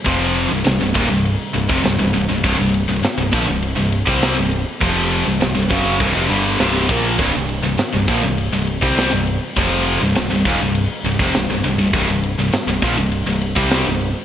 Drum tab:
CC |----------------|----------------|----------------|x---------------|
RD |x-x-x-x-x-x-x-x-|x-x-x-x-x-x-x-x-|x-x-x-x-x-x-x-x-|--x-x-x-x-x-x-x-|
SD |----o-------o---|----o-------o---|----o-------o---|----o-------o---|
BD |o-----o----o----|o-----o----o----|o-----o-o-----o-|o-----o----o----|

CC |----------------|----------------|
RD |x-x-x-x-x-x-x-x-|x-x-x-x-x-x-x-x-|
SD |----o-------o---|----o-------o---|
BD |o-----o----o----|o-----o----o----|